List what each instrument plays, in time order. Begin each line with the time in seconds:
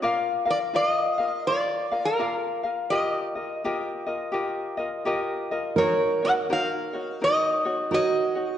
0.02 ukulele F4 A#4 D5 F5
0.46 ukulele F4 A#4 F5
0.51 resonator guitar played with a steel bar D5
0.74 ukulele F4 A#4 F5, resonator guitar played with a steel bar D5
0.87 resonator guitar played with a steel bar D#5
1.18 ukulele F4 A#4 F5
1.47 ukulele F4 A#4 D5 F5, resonator guitar played with a steel bar D5
1.91 ukulele F4 A#4 F5
2.05 resonator guitar played with a steel bar A#4
2.19 ukulele F4 A#4 D5 F5
2.63 ukulele F4 A#4 F5
2.90 ukulele F4 G4 A#4 D#5, resonator guitar played with a steel bar D#5
3.35 ukulele F4 A#4 D#5
3.64 ukulele F4 G4 A#4 D#5
4.07 ukulele F4 A#4 D#5
4.32 ukulele F4 G4 A#4 D#5
4.77 ukulele F4 A#4 D#5
5.05 ukulele F4 G4 A#4 D#5
5.51 ukulele F4 A#4 D#5
5.76 ukulele D#4 F#4 A#4 C#5, steel-string acoustic guitar A#4, resonator guitar played with a steel bar C#5
6.22 ukulele D#4 F#4 C#5, resonator guitar played with a steel bar F#5
6.50 ukulele D#4 F#4 A#4 C#5, resonator guitar played with a steel bar F5
6.93 ukulele D#4 F#4 C#5
7.21 ukulele D#4 F#4 A#4 C#5, resonator guitar played with a steel bar D#5
7.65 ukulele D#4 F#4 C#5
7.91 ukulele D#4 F#4 A#4 C#5, steel-string acoustic guitar F#4, resonator guitar played with a steel bar D#5
8.35 ukulele D#4 F#4 C#5